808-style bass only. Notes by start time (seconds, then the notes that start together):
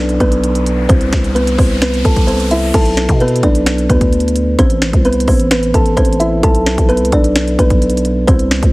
Already playing: B1
0.20 B1
0.89 C2
1.13 C2
1.59 C2
2.05 C2
2.74 B1
3.09 B2
3.43 B1
3.89 D2
4.59 A1
4.93 C2
5.28 A1
5.74 A1
5.97 A1
6.43 B1
6.78 B1
7.01 C2
7.12 B1
7.59 B1
8.28 C2
8.63 C2